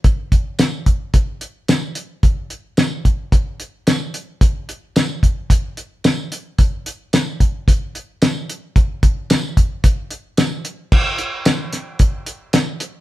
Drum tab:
CC |--------|--------|--------|--------|
HH |xxxxxxxx|xxxxxxxx|xxxxxxxx|xxxxxxxx|
TB |--x---x-|--x---x-|--x---x-|--x---x-|
SD |--o---o-|--o---o-|--o---o-|--o---o-|
BD |oo-oo---|o--oo---|o--oo---|o--oo---|

CC |--------|x-------|
HH |xxxxxxxx|-xxxxxxx|
TB |--x---x-|--x---x-|
SD |--o---o-|--oo--o-|
BD |oo-oo---|o---o---|